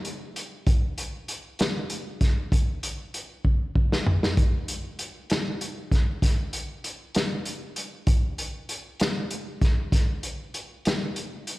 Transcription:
0.05 closed hi-hat
0.36 closed hi-hat
0.67 kick, closed hi-hat
0.98 closed hi-hat
1.28 closed hi-hat
1.59 snare, closed hi-hat
1.90 closed hi-hat
2.21 kick, snare, closed hi-hat
2.52 kick, closed hi-hat
2.83 closed hi-hat
3.14 closed hi-hat
3.45 kick
3.75 kick
3.92 snare
4.06 floor tom
4.23 snare
4.37 kick, closed hi-hat
4.68 closed hi-hat
4.99 closed hi-hat
5.30 snare, closed hi-hat
5.61 closed hi-hat
5.91 kick, snare, closed hi-hat
6.22 kick, snare, closed hi-hat
6.53 closed hi-hat
6.84 closed hi-hat
7.15 snare, closed hi-hat
7.45 closed hi-hat
7.76 closed hi-hat
8.07 kick, closed hi-hat
8.38 closed hi-hat
8.69 closed hi-hat
9.00 snare, closed hi-hat
9.31 closed hi-hat
9.62 kick, snare, closed hi-hat
9.92 kick, snare, closed hi-hat
10.23 closed hi-hat
10.54 closed hi-hat
10.85 snare, closed hi-hat
11.16 closed hi-hat
11.47 closed hi-hat

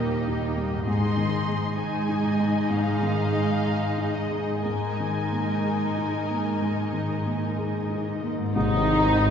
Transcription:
Already playing: D#2 A#2 D#3 G3 A#3 D#4 G4 A#4 D#5
0.28 D#4
0.57 G3
0.69 G#2
0.73 G#3
0.78 D#4
0.82 G#4 C6
0.87 G#2 G#3 D#4 G#4 D#5
1.17 D#3
1.48 G#3
1.77 G#3 D#4 G#4 D#5 G#5
2.09 D#4
2.39 G#3
2.70 G#2 F5
3.03 D#3
3.32 G#3
3.65 G#4
3.98 D#4
4.14 D#5
4.31 G#3
4.48 G#2
4.53 A#3
4.57 D#4
4.61 G#3 A#4 D#5 G#5
4.65 G#2 D#4
5.00 D#3
5.32 A#3
5.64 G#4
5.97 D#4
6.30 A#3
6.62 G#2
6.93 D#3
7.25 A#3
7.57 G#4
7.90 D#4
8.22 A#3
8.38 G#2
8.42 C4
8.47 D#4
8.52 D#4 C5, tam-tam
8.56 G#1 G#2 D#3 C4 D#4 C5

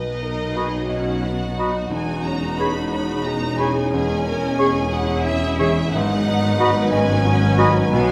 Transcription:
Already playing: B1 B2 F#3 D#4 B4 D#5
0.22 D#4 A#4
0.55 F#4 G#4 B4 D#5 B5
0.89 C#4 F#4 D#5 F#5
1.22 B3 F#4
1.57 D#4 F#4 D#5 B5
1.91 E1 E2 G#3 C#4 G#5
2.25 C#4 A#5
2.58 G#4 B4 C#5 B5
2.92 C#5 B5
3.25 G#4 A#5
3.58 C#4 G#4 C#5 G#5 B5
3.92 E2 C#4 G#4 G#5
4.26 C#4 A#4
4.59 G#4 C#5 C#6
4.92 E4 G#4 F#5
5.24 C#4 E5
5.59 E3 G#4 C#5 E5 C#6
5.92 G#1 G#2 F#3 B3 D#4 B4 F#5
6.28 D#4
6.60 F#4 B4 D#5 B5
6.91 C#4 D#5 G#5
7.25 F#4
7.58 D#4 F#4 D#5 B5
7.90 B1 B2 B3 B4 D#5 G#5

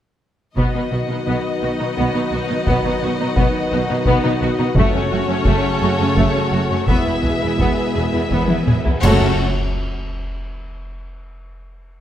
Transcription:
0.56 B1 B2 D#3 F#3 B3 D#4 F#4 B4 D#5 F#5, taiko
0.74 B2 B3 D#4
0.91 B1 B2 B3 F#4
1.09 B2 B3 D#4
1.27 B1 B2 B3
1.62 B1 B2 B3 F#4
1.79 B2 B3 D#4
1.96 B1 B2 B3
2.13 B2 B3 D#4
2.32 B1 B2 B3 F#4
2.48 B2 B3 D#4
2.66 B1 B2 B3, taiko
2.84 B2 B3 D#4
3.03 B1 B2 B3 F#4
3.20 B2 B3 D#4
3.36 B1 B2 B3, taiko
3.72 B1 B2 B3 F#4
3.89 B2 B3 D#4
4.06 B1 B2 B3, taiko
4.23 B2 B3 D#4
4.41 B1 B2 B3 F#4
4.58 B2 B3 D#4
4.75 F#1 F#2 C#3 F#3 A3 C#4 F#4 C#5, taiko
4.79 A4
4.94 F#2 A3 C#4
5.11 F#1 F#2 A3 F#4
5.28 F#2 A3 C#4
5.45 F#1 F#2 A3, taiko
5.81 F#1 F#2 A3 F#4
5.99 F#2 A3 C#4
6.15 F#1 F#2 A3, taiko
6.33 F#2 A3 C#4
6.52 F#1 F#2 A3 F#4
6.70 F#2 A3 C#4
6.87 E1 E2 B2 G#3 B3 E4 G#4 B4 E5, taiko
7.07 E2 B3 E4
7.23 E1 E2 G#4, taiko low
7.27 B3
7.42 E2 B3 E4
7.59 E1 E2 B3, taiko
7.94 E1 E2 G#4
7.99 B3
8.14 E2 B3 E4
8.30 E1 E2 B3, taiko
8.48 E2 B3 E4, taiko high
8.67 E1 E2 B3 G#4, taiko mid
8.84 E2 B3 E4, taiko low
9.01 F#1 F#2 C#3 F#3 A3 C#4 F#4 A4 C#5 F#5, concert bass drum, crash

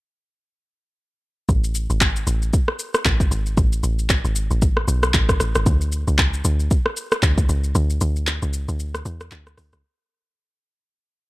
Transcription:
1.49 A1, kick, shaker
1.64 shaker
1.75 shaker
1.90 G#1, shaker
2.01 kick, clap, shaker
2.16 shaker
2.27 A1, shaker
2.42 shaker
2.53 kick, shaker
2.68 cross-stick
2.79 shaker
2.94 cross-stick, shaker
3.05 A1, kick, clap, shaker
3.20 kick, shaker
3.31 G#1, shaker
3.46 shaker
3.57 A1, kick, shaker
3.73 shaker
3.83 A1, shaker
3.99 shaker
4.10 kick, clap, shaker
4.25 G#1, shaker
4.36 shaker
4.51 A1, shaker
4.62 kick, shaker
4.77 cross-stick
4.88 B1, shaker
5.03 cross-stick, shaker
5.14 A1, kick, clap, shaker
5.29 kick, cross-stick, shaker
5.40 A1, cross-stick, shaker
5.55 G#1, cross-stick, shaker
5.66 D2, kick, shaker
5.81 shaker
5.92 shaker
6.08 C#2, shaker
6.18 kick, clap, shaker
6.34 shaker
6.45 D2, shaker
6.60 shaker
6.71 kick, shaker
6.86 cross-stick
6.97 shaker
7.12 cross-stick, shaker
7.23 D2, kick, clap, shaker
7.38 kick, shaker
7.49 C#2, shaker
7.64 shaker
7.75 D2, shaker
7.90 shaker
8.01 D2, shaker
8.16 shaker
8.27 clap, shaker
8.42 C#2, shaker
8.53 shaker
8.68 D2, shaker
8.80 shaker
8.95 cross-stick, shaker
9.05 E2, shaker
9.21 cross-stick, shaker
9.31 D2, clap, shaker
9.47 cross-stick, shaker
9.58 D2, cross-stick, open hi-hat, shaker
9.73 C#2, cross-stick, shaker

